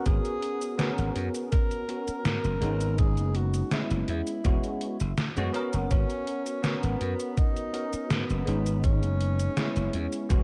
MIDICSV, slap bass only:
0, 0, Header, 1, 3, 480
1, 0, Start_track
1, 0, Key_signature, 5, "minor"
1, 0, Tempo, 731707
1, 39, Time_signature, 4, 2, 24, 8
1, 6844, End_track
2, 0, Start_track
2, 0, Title_t, "Slap bass"
2, 0, Program_c, 0, 36
2, 42, Note_on_c, 0, 32, 98
2, 121, Note_off_c, 0, 32, 0
2, 646, Note_on_c, 0, 32, 100
2, 719, Note_off_c, 0, 32, 0
2, 761, Note_on_c, 0, 42, 95
2, 841, Note_off_c, 0, 42, 0
2, 1481, Note_on_c, 0, 44, 101
2, 1561, Note_off_c, 0, 44, 0
2, 1603, Note_on_c, 0, 30, 104
2, 1678, Note_off_c, 0, 30, 0
2, 1719, Note_on_c, 0, 32, 98
2, 2082, Note_off_c, 0, 32, 0
2, 2082, Note_on_c, 0, 30, 97
2, 2373, Note_off_c, 0, 30, 0
2, 2564, Note_on_c, 0, 30, 102
2, 2638, Note_off_c, 0, 30, 0
2, 2679, Note_on_c, 0, 40, 98
2, 2760, Note_off_c, 0, 40, 0
2, 2920, Note_on_c, 0, 28, 103
2, 3000, Note_off_c, 0, 28, 0
2, 3285, Note_on_c, 0, 30, 105
2, 3359, Note_off_c, 0, 30, 0
2, 3526, Note_on_c, 0, 42, 103
2, 3599, Note_off_c, 0, 42, 0
2, 3764, Note_on_c, 0, 30, 82
2, 3838, Note_off_c, 0, 30, 0
2, 3878, Note_on_c, 0, 32, 101
2, 3959, Note_off_c, 0, 32, 0
2, 4484, Note_on_c, 0, 32, 102
2, 4558, Note_off_c, 0, 32, 0
2, 4599, Note_on_c, 0, 42, 98
2, 4680, Note_off_c, 0, 42, 0
2, 5319, Note_on_c, 0, 44, 107
2, 5400, Note_off_c, 0, 44, 0
2, 5446, Note_on_c, 0, 30, 107
2, 5519, Note_off_c, 0, 30, 0
2, 5561, Note_on_c, 0, 32, 100
2, 5926, Note_off_c, 0, 32, 0
2, 5926, Note_on_c, 0, 30, 94
2, 6214, Note_off_c, 0, 30, 0
2, 6406, Note_on_c, 0, 30, 103
2, 6479, Note_off_c, 0, 30, 0
2, 6522, Note_on_c, 0, 40, 95
2, 6601, Note_off_c, 0, 40, 0
2, 6760, Note_on_c, 0, 28, 100
2, 6840, Note_off_c, 0, 28, 0
2, 6844, End_track
3, 0, Start_track
3, 0, Title_t, "Muted slap bass strokes"
3, 1367, Note_on_c, 9, 29, 43
3, 1433, Note_off_c, 9, 29, 0
3, 5205, Note_on_c, 9, 29, 46
3, 5271, Note_off_c, 9, 29, 0
3, 6844, End_track
0, 0, End_of_file